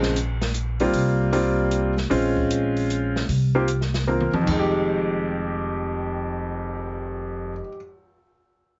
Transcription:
Already playing: upright bass A#1, grand piano C#3 F3 G#3 C4
0.03 snare
0.16 closed hi-hat
0.41 snare, open hi-hat
0.54 closed hi-hat
0.80 grand piano G3 A#3 C4 F4, open hi-hat
0.93 upright bass C2, kick, open hi-hat
1.33 grand piano G3 A#3 C4 F4, open hi-hat
1.71 closed hi-hat
1.97 snare
2.10 upright bass A#1, grand piano G#3 C4 C#4 F4, kick, open hi-hat
2.37 kick
2.51 closed hi-hat
2.77 open hi-hat
2.90 closed hi-hat
3.16 snare
3.29 upright bass C2, kick, open hi-hat
3.55 grand piano A#3 C4 F4 G4
3.68 closed hi-hat
3.81 snare
3.94 snare, open hi-hat
4.07 grand piano A#3 C4 F4 A#4, mid tom
4.20 mid tom
4.33 grand piano F2, muted upright bass stroke, mid tom
4.42 grand piano D#3
4.46 upright bass F1, kick, crash
4.51 grand piano G#3
4.59 grand piano G4
4.74 cymbal swell

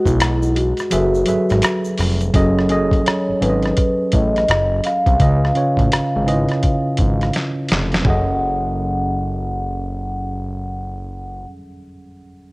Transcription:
Already playing: tine electric piano G#3 G#4 B4 D#5 F#5
0.05 analog synth bass B1, vibraphone E4, kick, closed hi-hat, shaker
0.20 finger snap, cross-stick, closed hi-hat, shaker
0.43 shaker
0.55 vibraphone F#4, closed hi-hat
0.77 cross-stick, closed hi-hat, shaker
0.91 analog synth bass F#1, tine electric piano F#3 F#4 G#4 A4 B4 E5, closed hi-hat, shaker
1.14 shaker
1.26 analog synth bass G#1, tine electric piano F#3 F#4 G#4 A4 B4 E5, closed hi-hat, shaker
1.50 analog synth bass G#1, cross-stick, closed hi-hat, shaker
1.62 finger snap, cross-stick, closed hi-hat, shaker
1.84 shaker
1.98 analog synth bass F1, cross-stick, open hi-hat, shaker
2.21 closed hi-hat, shaker
2.34 analog synth bass F#1, tine electric piano F#3 C#4 G#4 A4 D#5, kick, closed hi-hat
2.59 cross-stick
2.69 tine electric piano F#3 C#4 G#4 A4 D#5, closed hi-hat
2.91 kick, closed hi-hat
3.06 vibraphone C#5, cross-stick, closed hi-hat
3.29 analog synth bass G#1
3.41 analog synth bass G#1, tine electric piano F#3 C#4 G#4 A4 C#5, vibraphone B4, closed hi-hat
3.50 tine electric piano D#5
3.63 cross-stick, closed hi-hat
3.77 kick, closed hi-hat
4.12 analog synth bass A1, vibraphone D#5, kick, closed hi-hat
4.36 cross-stick, closed hi-hat
4.48 analog synth bass F#1, cross-stick, closed hi-hat
4.84 vibraphone F5, cross-stick, closed hi-hat
5.06 analog synth bass C2, kick, closed hi-hat
5.20 analog synth bass C#2, tine electric piano C#3 C#4 F4 B4 D#5, kick, closed hi-hat
5.45 cross-stick
5.55 tine electric piano C#3 C#4 F4 B4 C#5, closed hi-hat
5.77 analog synth bass A1, kick, closed hi-hat
5.92 cross-stick, closed hi-hat
6.16 analog synth bass G#1
6.26 tine electric piano C#3 C#4 E4 B4 D#5, closed hi-hat
6.34 tine electric piano F4
6.49 cross-stick, closed hi-hat
6.63 kick, closed hi-hat
6.97 analog synth bass G#1, kick, closed hi-hat
7.21 cross-stick, closed hi-hat
7.33 snare, closed hi-hat
7.69 analog synth bass F1, snare, closed hi-hat
7.92 snare, closed hi-hat
8.01 tine electric piano F#3 C#4, kick, floor tom
8.05 analog synth bass F#1, tine electric piano G#4 A4, vibraphone F#5
8.10 tine electric piano D#5

